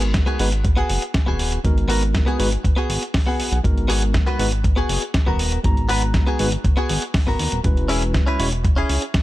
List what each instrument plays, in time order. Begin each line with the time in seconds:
Already playing: analog synth bass G#1, tine electric piano G#3 B3 D#4 F#4 A#4
0.02 closed hi-hat
0.14 muted clean electric guitar stroke, kick, snare, closed hi-hat
0.26 clean electric guitar B3 F#4 G#4, closed hi-hat
0.39 analog synth bass G#1, tine electric piano G#3 B3 D#4 F#4 B4, open hi-hat
0.52 closed hi-hat
0.64 muted clean electric guitar stroke, kick, closed hi-hat
0.77 clean electric guitar B3 F#4 G#4, closed hi-hat
0.90 analog synth bass F#1, open hi-hat
1.02 closed hi-hat
1.14 kick, snare, closed hi-hat
1.26 analog synth bass D#1, clean electric guitar B3 F#4 G#4
1.39 open hi-hat
1.52 closed hi-hat
1.64 analog synth bass G#1, tine electric piano G#3 B3 D#4 F#4 A#4, kick, closed hi-hat
1.78 closed hi-hat
1.88 clean electric guitar B3 F#4 A#4, open hi-hat
2.03 closed hi-hat
2.14 muted clean electric guitar stroke, kick, snare, closed hi-hat
2.26 clean electric guitar B3 F#4 G#4, closed hi-hat
2.39 analog synth bass G#1, tine electric piano G#3 B3 D#4 F#4 B4, open hi-hat
2.52 closed hi-hat
2.63 analog synth bass F#1, muted clean electric guitar stroke, kick, closed hi-hat
2.76 clean electric guitar B3 F#4 G#4, closed hi-hat
2.90 analog synth bass G#1, open hi-hat
3.03 closed hi-hat
3.14 kick, snare, open hi-hat
3.27 clean electric guitar B3 F#4 G#4
3.39 analog synth bass B1, open hi-hat
3.52 analog synth bass B1, closed hi-hat
3.63 analog synth bass G#1, tine electric piano G#3 B3 D#4 F#4 A#4, kick, closed hi-hat
3.78 closed hi-hat
3.88 clean electric guitar B3 F#4 G#4, open hi-hat
4.02 closed hi-hat
4.13 muted clean electric guitar stroke, kick, snare, closed hi-hat
4.27 clean electric guitar B3 F#4 B4, closed hi-hat
4.39 analog synth bass G#1, tine electric piano G#3 B3 D#4 F#4 B4, open hi-hat
4.52 closed hi-hat
4.64 muted clean electric guitar stroke, kick, closed hi-hat
4.76 clean electric guitar B3 F#4 G#4, closed hi-hat
4.89 analog synth bass F#1, open hi-hat
5.02 closed hi-hat
5.14 kick, snare, closed hi-hat
5.26 analog synth bass D#1, clean electric guitar B3 F#4 A#4
5.39 open hi-hat
5.52 closed hi-hat
5.64 analog synth bass G#1, tine electric piano G#3 B3 D#4 F#4 A#5, kick, closed hi-hat
5.77 closed hi-hat
5.89 clean electric guitar B3 F#4 B4, open hi-hat
6.02 closed hi-hat
6.14 muted clean electric guitar stroke, kick, snare, closed hi-hat
6.27 clean electric guitar B3 F#4 G#4, closed hi-hat
6.39 analog synth bass G#1, tine electric piano G#3 B3 D#4 F#4 B4, open hi-hat
6.52 closed hi-hat
6.64 analog synth bass F#1, muted clean electric guitar stroke, kick, closed hi-hat
6.77 clean electric guitar B3 F#4 G#4, closed hi-hat
6.89 analog synth bass G#1, open hi-hat
7.02 closed hi-hat
7.14 kick, snare, open hi-hat
7.27 analog synth bass G#1, clean electric guitar B3 F#4 A#4
7.39 analog synth bass D#2, open hi-hat
7.52 analog synth bass D#1, closed hi-hat
7.64 analog synth bass E1, tine electric piano G#3 C#4 E4 F#4 B4, kick, closed hi-hat
7.77 closed hi-hat
7.88 clean electric guitar C#4 E4 G#4, open hi-hat
8.02 closed hi-hat
8.14 muted clean electric guitar stroke, kick, snare, closed hi-hat
8.26 clean electric guitar C#4 E4 B4, closed hi-hat
8.39 analog synth bass E1, tine electric piano G#3 C#4 E4 F#4 C#5, open hi-hat
8.52 closed hi-hat
8.64 muted clean electric guitar stroke, kick, closed hi-hat
8.76 clean electric guitar C#4 E4 G#4, closed hi-hat
8.89 analog synth bass C#2, open hi-hat
9.02 closed hi-hat
9.14 kick, snare, closed hi-hat